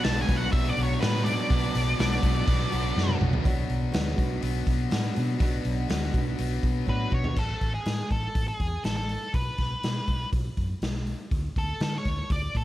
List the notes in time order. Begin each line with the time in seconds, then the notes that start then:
Already playing: B2 F#3 B3
0.04 B1 B2 F#3 B3 D4 A5, snare, open hi-hat
0.21 G#5
0.27 B1 B2 F#3 B3 D4, kick, open hi-hat
0.37 F#5
0.52 B1 B2 F#3 B3 D4 E5, kick, open hi-hat
0.69 D5
0.76 B1 F#3 B3 D4, open hi-hat
0.83 C#5
1.01 A2 B2 F#3 B3 D4 B4, snare, open hi-hat
1.25 F#3 B3 D4 D5, open hi-hat
1.49 B1 B2 F#3 B3 D4, kick, open hi-hat
1.54 B3
1.74 B1 F#3 B3 D4, snare, open hi-hat
1.97 B1 B2 F#3 B3 D4, snare, open hi-hat
2.22 B1 B2 F#3 B3 D4, kick, open hi-hat
2.46 B1 B2 F#3 B3 D4, kick, open hi-hat
2.71 B1 F#3 B3 D4, open hi-hat
2.96 F#2 B2 F#3 B3 D4, snare
3.09 high tom
3.20 B1 F#3 B3 D4, mid tom
3.33 floor tom
3.44 B1 B2 F#3 B3 D4 F#4, kick, open hi-hat
3.70 B1, open hi-hat
3.92 D2 B2 F#3 B3 D4 F#4, snare, open hi-hat
4.16 B1 B3 D4 F#4, kick, open hi-hat
4.41 B1 B2 F#3 B3, open hi-hat
4.67 B1, kick, open hi-hat
4.89 A2 F#3 B3 D4 F#4, snare, open hi-hat
5.14 B2 B3 D4 F#4, open hi-hat
5.38 B1 B2 F#3 B3, kick, open hi-hat
5.42 D4 F#4
5.65 B1, open hi-hat
5.87 D2 B2 F#3 B3 D4 F#4, snare, open hi-hat
6.13 B1 B3 D4 F#4, kick, open hi-hat
6.36 B1 B2 F#3 B3, open hi-hat
6.63 B1, kick, open hi-hat
6.85 A2 F#3 B3 D4 F#4 B4, kick
7.10 B2 B3 D4 F#4, kick
7.14 C#5
7.24 floor tom
7.36 A1 A4, kick, crash
7.61 A1, kick, open hi-hat
7.74 G#4
7.85 A2, snare, open hi-hat
8.11 A1 A4, kick, open hi-hat
8.35 A1, kick, open hi-hat
8.48 G#4
8.60 E2, kick, open hi-hat
8.84 A1 A4, snare, open hi-hat
8.96 A4
9.09 open hi-hat
9.34 B1 B4, kick, open hi-hat
9.58 B1, kick, snare, open hi-hat
9.83 B2, snare, open hi-hat
10.08 B1, kick, open hi-hat
10.33 B1, kick, open hi-hat
10.57 F#2, kick, open hi-hat
10.82 B1, snare, open hi-hat
11.07 open hi-hat
11.31 D2, kick, open hi-hat
11.56 D2 A4, kick, open hi-hat
11.80 D3 A4, snare, open hi-hat
11.98 C#5
12.05 D2, kick, open hi-hat
12.30 D2 D5, kick, open hi-hat
12.55 A2 A4, kick, open hi-hat